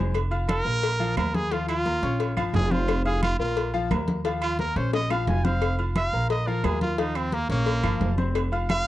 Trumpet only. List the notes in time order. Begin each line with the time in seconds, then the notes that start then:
0.49 A#4
1.18 A#4
1.35 G#4
1.52 F4
1.69 F4
2.55 G#4
2.72 F4
3.05 G#4
3.23 F4
3.40 F4
4.42 F4
4.60 A#4
4.77 C5
4.94 D#5
5.11 F5
5.28 G#5
5.45 F5
5.97 F5
6.30 D#5
6.47 A#4
6.65 G#4
6.82 F4
6.99 D#4
7.16 C4
7.33 A#3
7.51 A#3
8.70 F5